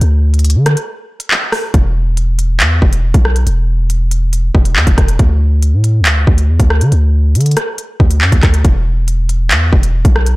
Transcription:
0.01 0.57 D2 loud
0.01 closed hi-hat medium
0.34 closed hi-hat soft
0.39 closed hi-hat medium
0.45 closed hi-hat medium
0.50 closed hi-hat medium
0.55 0.76 D3 loud
0.66 cross-stick loud
0.66 closed hi-hat medium
0.77 closed hi-hat medium
1.20 closed hi-hat medium
1.31 clap loud
1.52 cross-stick loud
1.52 open hi-hat medium
1.74 2.62 E1 loud
1.74 kick loud
1.74 closed hi-hat medium
2.17 closed hi-hat medium
2.39 closed hi-hat medium
2.60 2.81 E2 loud
2.60 clap loud
2.60 closed hi-hat medium
2.82 3.13 E1 loud
2.82 kick medium
2.93 closed hi-hat medium
3.14 3.45 B1 loud
3.14 kick medium
3.14 closed hi-hat medium
3.25 cross-stick medium
3.36 closed hi-hat medium
3.47 4.51 E1 loud
3.47 closed hi-hat medium
3.90 closed hi-hat medium
4.11 closed hi-hat medium
4.33 closed hi-hat medium
4.55 4.78 E1 loud
4.55 kick medium
4.65 closed hi-hat medium
4.76 4.86 E2 loud
4.76 clap loud
4.87 4.97 E1 loud
4.87 kick medium
4.87 closed hi-hat medium
4.98 5.18 E1 loud
4.98 kick loud
4.98 cross-stick medium
4.98 closed hi-hat medium
5.08 closed hi-hat medium
5.19 5.75 D2 loud
5.19 kick loud
5.19 closed hi-hat medium
5.62 closed hi-hat medium
5.73 6.02 A2 loud
5.84 closed hi-hat medium
6.00 6.26 D2 loud
6.05 clap loud
6.05 closed hi-hat medium
6.27 6.50 D2 loud
6.27 kick medium
6.38 closed hi-hat medium
6.49 6.59 E2 loud
6.60 6.83 D2 loud
6.60 kick loud
6.60 closed hi-hat medium
6.70 cross-stick loud
6.81 6.91 D3 loud
6.81 closed hi-hat medium
6.92 7.37 D2 loud
6.92 closed hi-hat medium
7.35 7.56 D3 loud
7.35 closed hi-hat medium
7.41 closed hi-hat medium
7.46 closed hi-hat medium
7.51 closed hi-hat soft
7.57 cross-stick loud
7.57 closed hi-hat medium
7.78 closed hi-hat medium
8.00 8.23 D2 loud
8.00 kick medium
8.11 closed hi-hat medium
8.21 8.32 F#2 loud
8.21 clap loud
8.32 8.42 D2 loud
8.32 kick medium
8.32 closed hi-hat medium
8.43 8.64 D2 loud
8.43 kick loud
8.43 cross-stick medium
8.43 clap medium
8.43 closed hi-hat medium
8.54 closed hi-hat medium
8.65 9.53 E1 loud
8.65 kick loud
8.65 closed hi-hat medium
9.08 closed hi-hat medium
9.29 closed hi-hat medium
9.51 9.71 E2 loud
9.51 clap loud
9.51 closed hi-hat medium
9.73 10.04 E1 loud
9.73 kick medium
9.83 closed hi-hat medium
10.05 10.36 B1 loud
10.05 kick medium
10.05 closed hi-hat medium
10.16 cross-stick loud
10.26 closed hi-hat medium

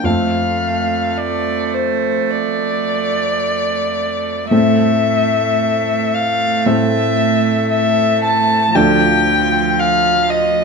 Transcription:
0.04 4.47 F2 soft
0.04 4.48 A3 soft
0.04 4.48 C4 soft
0.04 4.48 A4 soft
0.04 1.19 F5 medium
1.18 1.75 D5 medium
1.74 2.32 C5 medium
2.31 4.50 D5 medium
4.51 6.63 A2 soft
4.51 6.63 A3 soft
4.51 8.73 A3 soft
4.51 6.63 C4 soft
4.51 6.63 A4 soft
4.51 6.16 E5 medium
6.14 6.68 F5 medium
6.66 8.71 A2 medium
6.66 8.71 A3 soft
6.66 8.71 C4 soft
6.66 8.72 A4 soft
6.66 7.69 E5 medium
7.70 8.22 E5 medium
8.24 8.77 A5 medium
8.75 10.64 D2 soft
8.75 10.64 F3 soft
8.75 10.64 F3 medium
8.75 10.64 D4 soft
8.75 10.64 A4 soft
8.75 9.81 G5 medium
9.79 10.31 F5 medium
10.30 10.64 D#5 medium

